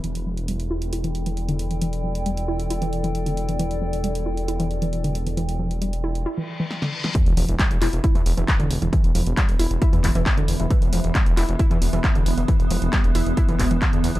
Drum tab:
HH |xx-xxx-xxxxxxxxx|xx-xxx-xxxxxxxxx|xx-xxx-xxxxxxxxx|xx-xxx-x--------|
CP |----------------|----------------|----------------|----------------|
SD |----------------|----------------|----------------|------------oo-o|
BD |----------------|----------------|----------------|----------------|

HH |xxoxxxoxxxoxxxox|xxoxxxoxxxoxxxox|xxoxxxoxxxoxxxox|xxoxxxoxxxoxxxox|
CP |----x-x-----x---|----x-----x-x---|----x-x-----x---|----x-----x-x---|
SD |----------------|----------------|----------------|----------------|
BD |o---o---o---o---|o---o---o-o-o---|o---o---o---o---|o---o---o-o-o---|